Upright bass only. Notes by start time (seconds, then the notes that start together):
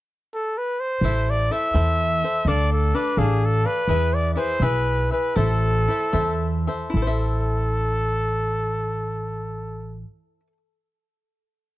1.01 A1
1.74 E2
2.45 D2
3.17 A1
3.88 E2
4.60 B1
5.36 A1
6.13 E2
6.94 A1